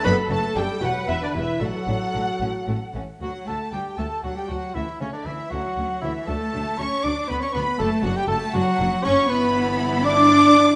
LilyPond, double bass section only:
\new Staff \with { instrumentName = "Double bass section" } { \clef bass \time 6/8 \key d \major \tempo 4. = 79 fis,,8 fis,,8 fis,,8 e,,8 e,,8 e,,8 | a,,8 a,,8 a,,8 a,,8 a,,8 a,,8 | d,8 d,8 d,8 d,8 d,8 d,8 | d,8 d,8 d,8 d,8 d,8 d,8 |
d,8 d,8 d,8 d,8 d,8 d,8 | fis,,8 fis,,8 fis,,8 fis,,8 fis,,8 fis,,8 | g,,2. | }